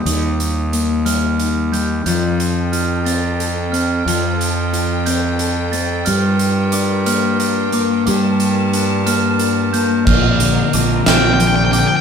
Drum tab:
CC |------|------|------|------|
HH |xxxxxx|xxxxxx|xxxxxx|xxxxxx|
SD |------|------|------|------|
BD |------|------|------|------|

CC |------|x-----|
HH |xxxxxx|-xxxxx|
SD |------|---o--|
BD |------|o-----|